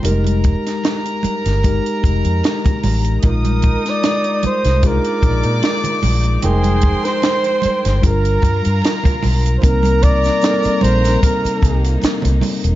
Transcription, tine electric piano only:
X:1
M:4/4
L:1/8
Q:"Swing 16ths" 1/4=75
K:Cm
V:1 name="Tine electric piano"
[G,A,EGB]3 z [A,EGB]3 z | [A,EFB]3 z [A,DEFA]3 z | [G,A,EBg]3 z [G,DFAB]3 z | [G,B,CEB]2 [G,B,CE=AB]3 z3 |]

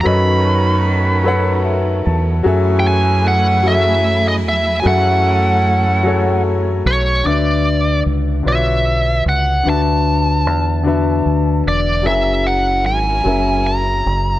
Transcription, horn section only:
X:1
M:6/8
L:1/8
Q:3/8=50
K:F#dor
V:1 name="Horn section"
[D,CF]4- [D,CF] z | [E,CG]4- [E,CG] z | [E,CA]4- [E,CA] z | [K:Dlyd] z6 |
z6 | z6 |]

